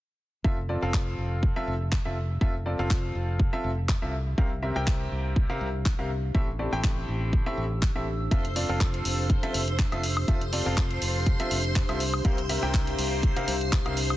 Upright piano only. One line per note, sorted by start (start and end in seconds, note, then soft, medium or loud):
0.44 0.56 F3 medium
0.44 0.56 C4 medium
0.44 0.56 F4 medium
0.44 0.56 A4 medium
0.44 0.56 E5 medium
0.69 0.80 F3 medium
0.69 0.80 C4 medium
0.69 0.80 F4 medium
0.69 0.80 A4 medium
0.69 0.80 D5 medium
0.82 1.53 F3 medium
0.82 1.53 C4 medium
0.82 1.53 F4 medium
0.82 1.53 A4 medium
0.82 1.53 F5 medium
1.56 1.72 F3 medium
1.56 1.72 C4 medium
1.56 1.72 F4 medium
1.56 1.72 A4 medium
1.56 1.72 E5 loud
2.05 2.15 F3 medium
2.05 2.15 C4 medium
2.05 2.15 F4 medium
2.05 2.15 A4 medium
2.05 2.15 E5 medium
2.41 2.53 F3 medium
2.41 2.53 C4 medium
2.41 2.53 F4 medium
2.41 2.53 A4 medium
2.41 2.53 E5 medium
2.66 2.77 F3 medium
2.66 2.77 C4 medium
2.66 2.77 F4 medium
2.66 2.77 A4 medium
2.66 2.77 D5 medium
2.79 3.50 F3 medium
2.79 3.50 C4 medium
2.79 3.50 F4 medium
2.79 3.50 A4 medium
2.79 3.50 F5 medium
3.53 3.69 F3 medium
3.53 3.69 C4 medium
3.53 3.69 F4 medium
3.53 3.69 A4 medium
3.53 3.69 E5 medium
4.02 4.12 C3 medium
4.02 4.12 C4 medium
4.02 4.12 F4 medium
4.02 4.12 A4 medium
4.02 4.12 E5 medium
4.38 4.49 C3 medium
4.38 4.49 C4 medium
4.38 4.49 G4 medium
4.38 4.49 A#4 medium
4.38 4.49 F5 medium
4.63 4.74 C3 medium
4.63 4.74 C4 medium
4.63 4.74 G4 medium
4.63 4.74 A#4 medium
4.63 4.74 E5 medium
4.76 5.46 C3 medium
4.76 5.46 C4 medium
4.76 5.46 G4 medium
4.76 5.46 A#4 medium
4.76 5.46 G5 loud
5.50 5.66 C3 medium
5.50 5.66 C4 medium
5.50 5.66 G4 medium
5.50 5.66 A#4 medium
5.50 5.66 F5 medium
5.99 6.08 C3 medium
5.99 6.08 C4 medium
5.99 6.08 G4 medium
5.99 6.08 A#4 medium
5.99 6.08 F5 medium
6.35 6.46 A2 medium
6.35 6.46 C4 medium
6.35 6.46 G4 medium
6.35 6.46 A4 medium
6.35 6.46 E5 medium
6.59 6.71 A2 medium
6.59 6.71 C4 medium
6.59 6.71 G4 medium
6.59 6.71 A4 medium
6.59 6.71 D5 medium
6.73 7.43 A2 medium
6.73 7.43 C4 medium
6.73 7.43 G4 medium
6.73 7.43 A4 medium
6.73 7.43 G5 loud
7.46 7.63 A2 medium
7.46 7.63 C4 medium
7.46 7.63 G4 medium
7.46 7.63 A4 medium
7.46 7.63 E5 loud
7.96 8.05 A2 medium
7.96 8.05 C4 medium
7.96 8.05 G4 medium
7.96 8.05 A4 medium
7.96 8.05 E5 medium
8.31 8.43 F3 medium
8.31 8.43 C4 medium
8.31 8.43 F4 medium
8.31 8.43 A4 medium
8.31 8.43 E5 medium
8.56 8.67 F3 medium
8.56 8.67 C4 medium
8.56 8.67 F4 medium
8.56 8.67 A4 medium
8.56 8.67 D5 medium
8.69 9.40 F3 medium
8.69 9.40 C4 medium
8.69 9.40 F4 medium
8.69 9.40 A4 medium
8.69 9.40 F5 loud
9.43 9.59 F3 medium
9.43 9.59 C4 medium
9.43 9.59 F4 medium
9.43 9.59 A4 medium
9.43 9.59 E5 loud
9.92 10.02 F3 medium
9.92 10.02 C4 medium
9.92 10.02 F4 medium
9.92 10.02 A4 medium
9.92 10.02 E5 medium
10.28 10.40 F3 medium
10.28 10.40 C4 medium
10.28 10.40 F4 medium
10.28 10.40 A4 medium
10.28 10.40 E5 medium
10.53 10.64 F3 medium
10.53 10.64 C4 medium
10.53 10.64 F4 medium
10.53 10.64 A4 medium
10.53 10.64 D5 medium
10.66 11.37 F3 medium
10.66 11.37 C4 medium
10.66 11.37 F4 medium
10.66 11.37 A4 medium
10.66 11.37 F5 loud
11.40 11.56 F3 medium
11.40 11.56 C4 medium
11.40 11.56 F4 medium
11.40 11.56 A4 medium
11.40 11.56 E5 loud
11.89 11.99 C3 medium
11.89 11.99 C4 medium
11.89 11.99 F4 medium
11.89 11.99 A4 medium
11.89 11.99 E5 medium
12.25 12.36 C3 medium
12.25 12.36 C4 medium
12.25 12.36 G4 medium
12.25 12.36 A#4 medium
12.25 12.36 F5 medium
12.49 12.61 C3 medium
12.49 12.61 C4 medium
12.49 12.61 G4 medium
12.49 12.61 A#4 medium
12.49 12.61 E5 medium
12.63 13.33 C3 medium
12.63 13.33 C4 medium
12.63 13.33 G4 medium
12.63 13.33 A#4 medium
12.63 13.33 G5 loud
13.36 13.53 C3 medium
13.36 13.53 C4 medium
13.36 13.53 G4 medium
13.36 13.53 A#4 medium
13.36 13.53 F5 loud
13.86 13.95 C3 medium
13.86 13.95 C4 medium
13.86 13.95 G4 medium
13.86 13.95 A#4 medium
13.86 13.95 F5 medium